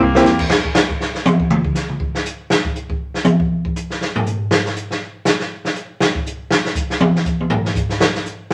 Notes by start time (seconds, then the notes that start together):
0.00 C2 A#3
0.15 A#3 C4 E4 G4, snare
0.24 E2, snare, hi-hat pedal
0.39 kick, crash
0.50 snare
0.64 kick
0.75 snare, hi-hat pedal
0.89 kick
1.00 snare
1.15 snare
1.26 hi-hat pedal, high tom
1.40 kick
1.50 mid tom
1.65 kick
1.75 snare, hi-hat pedal
1.89 mid tom
2.00 kick
2.15 snare
2.25 hi-hat pedal
2.50 snare
2.65 kick
2.75 hi-hat pedal
2.90 kick
3.14 snare
3.25 hi-hat pedal, high tom
3.40 kick
3.65 kick
3.76 hi-hat pedal
3.90 snare
4.01 snare
4.16 floor tom
4.26 hi-hat pedal
4.51 snare
4.66 snare
4.76 hi-hat pedal
4.91 snare
5.25 snare, hi-hat pedal
5.40 snare
5.65 snare
5.75 hi-hat pedal
6.00 snare
6.15 kick
6.26 hi-hat pedal
6.51 snare
6.65 snare
6.75 kick, hi-hat pedal
6.90 snare
7.00 high tom
7.15 snare
7.25 kick, hi-hat pedal
7.40 high tom
7.50 floor tom
7.65 snare
7.75 kick, hi-hat pedal
7.89 snare
8.00 snare
8.15 snare
8.25 hi-hat pedal